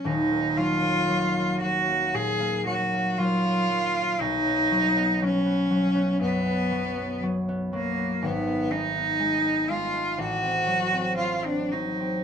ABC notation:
X:1
M:4/4
L:1/16
Q:1/4=59
K:Ebm
V:1 name="Cello"
E2 F4 G2 A2 G2 F4 | ^D4 _D4 =B,4 z2 _B,2 | C2 E4 F2 ^F4 =F =D E2 |]
V:2 name="Harp"
[E,,,E,,G,B,E] B, G, B, G, B, G, B, B,, B, G, B, G, B, G, B, | =B,,, =B, ^F, B, F, B, F, B, ^F,, B, F, B, F, B, F, B, | A,,, C A, C A, C A, C =A,,, =C ^F, C F, C F, C |]